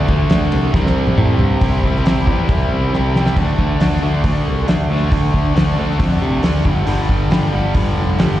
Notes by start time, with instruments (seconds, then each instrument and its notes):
Already playing: overdriven electric guitar D3 A3 D4
0.08 picked electric bass D2, kick, ride
0.30 picked electric bass D2, snare, ride
0.52 picked electric bass C2, ride
0.73 picked electric bass C2, overdriven electric guitar C3 G3 C4, kick, snare
0.86 snare
1.07 high tom
1.18 picked electric bass A2, mid tom
1.39 picked electric bass G2, floor tom
1.51 floor tom
1.61 picked electric bass C2, overdriven electric guitar C3 G3 C4 E4, kick, open hi-hat
1.83 picked electric bass C2, overdriven electric guitar G3 C4 E4, kick
1.96 snare
2.06 picked electric bass C2, overdriven electric guitar C3 G3 C4 E4, snare, open hi-hat
2.27 picked electric bass E2, overdriven electric guitar G3 C4 E4, kick
2.49 picked electric bass C2, kick, open hi-hat
2.72 picked electric bass C2
2.92 picked electric bass C2, overdriven electric guitar C3 G3 C4 E4, snare
3.14 overdriven electric guitar G3 C4 E4, snare
3.26 snare
3.36 picked electric bass D2, overdriven electric guitar D3 A3 D4, kick, crash
3.58 picked electric bass D2, kick
3.80 picked electric bass D2, overdriven electric guitar D3 A3 D4, snare, open hi-hat
4.02 picked electric bass D2, overdriven electric guitar D3 A3 D4
4.24 picked electric bass D2, overdriven electric guitar D3 A3 D4, kick, open hi-hat
4.47 picked electric bass C2
4.68 picked electric bass D2, overdriven electric guitar D3 A3 D4, snare, open hi-hat
4.90 picked electric bass D2, overdriven electric guitar D3 A3 D4
5.11 picked electric bass D2, overdriven electric guitar D3 A3 D4, kick, open hi-hat
5.34 picked electric bass D2, kick
5.55 picked electric bass D2, overdriven electric guitar D3 A3 D4, snare, open hi-hat
5.77 picked electric bass D2, overdriven electric guitar D3 A3 D4
5.90 snare
5.98 picked electric bass F2, overdriven electric guitar D3 A3 D4, kick, open hi-hat
6.22 picked electric bass C3
6.43 picked electric bass D2, overdriven electric guitar D3 A3 D4, snare, open hi-hat
6.65 picked electric bass G1, overdriven electric guitar G2 D3 G3, kick
6.86 picked electric bass G1, overdriven electric guitar G2 D3 G3, open hi-hat
7.09 picked electric bass G1, kick
7.30 picked electric bass G1, overdriven electric guitar G2 D3 G3, snare, open hi-hat
7.53 picked electric bass G1, overdriven electric guitar G2 D3 G3
7.75 picked electric bass G1, overdriven electric guitar G2 D3 G3, kick, open hi-hat
7.98 picked electric bass F1
8.19 picked electric bass G1, overdriven electric guitar G2 D3 G3, snare, open hi-hat